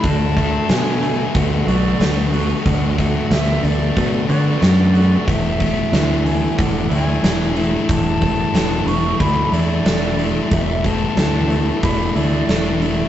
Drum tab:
HH |oooooooo|oooooooo|oooooooo|oooooooo|
SD |--o---o-|--o---o-|--o---o-|--o---o-|
BD |oo--o---|oo--o---|oo--o---|oo--o---|

HH |oooooooo|
SD |--o---o-|
BD |oo--o---|